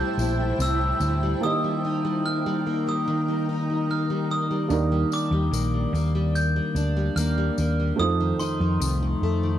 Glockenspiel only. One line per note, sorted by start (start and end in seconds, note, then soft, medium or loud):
0.00 0.63 G6 loud
0.62 1.45 E6 medium
1.43 2.27 D#6 medium
2.26 2.88 F6 medium
2.89 4.27 D#6 medium
3.91 4.32 F6 medium
4.31 5.15 D#6 medium
5.13 6.39 D6 medium
6.35 7.20 G6 medium
7.16 8.01 F6 medium
8.00 8.18 D#6 loud
8.39 9.59 C6 loud